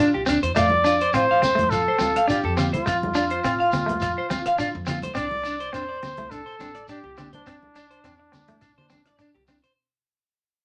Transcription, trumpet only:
0.00 0.29 F4 medium
0.56 1.16 D5 loud
1.14 1.72 C5 loud
1.70 2.28 A4 medium
2.29 2.70 G4 medium
2.73 4.84 F4 medium
5.15 5.75 D5 loud
5.73 6.32 C5 medium
6.31 6.89 A4 loud
6.89 7.30 G4 medium
7.35 9.45 D4 medium

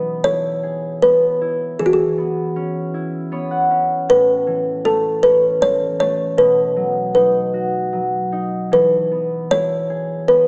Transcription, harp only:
0.00 1.78 E3 medium
0.00 1.02 B3 soft
0.00 0.28 F#5 medium
0.24 1.41 E4 soft
0.63 2.91 G#4 soft
1.03 2.17 B3 soft
1.41 2.94 E4 soft
1.79 4.13 E3 medium
2.18 3.31 B3 soft
2.56 3.70 C#4 soft
2.94 5.55 E4 soft
3.32 6.42 B3 soft
3.32 5.23 C#5 medium
3.51 5.12 F#5 medium
3.71 5.22 C#4 soft
4.09 6.42 A2 medium
4.47 5.60 E3 soft
4.84 5.99 A3 soft
5.23 8.13 C#4 soft
5.61 6.42 E3 soft
5.99 9.32 A3 soft
6.37 8.77 B2 medium
6.76 7.91 F#3 soft
7.15 8.32 D#4 soft
7.54 9.97 F#4 soft
7.93 8.77 F#3 soft
8.32 8.78 D#4 soft
8.71 10.48 E3 medium
9.11 10.28 B3 soft
9.50 10.48 E4 medium
9.90 10.48 G#4 soft
10.28 10.48 B3 soft

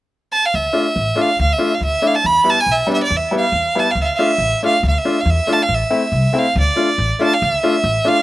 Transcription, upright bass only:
0.54 0.66 D2 medium
0.96 1.08 A1 medium
1.39 1.52 D2 medium
1.81 1.94 D2 medium
2.24 2.37 E2 medium
2.66 2.80 B1 medium
3.11 3.23 E2 medium
3.52 3.66 E2 medium
3.95 4.09 D2 medium
4.38 4.52 A1 medium
4.83 4.96 D2 medium
5.25 5.39 E2 medium
5.69 5.82 A1 medium
6.12 6.25 C2 medium
6.56 6.68 D2 loud
6.98 7.11 A1 medium
7.42 7.54 D2 medium
7.84 7.96 A1 medium

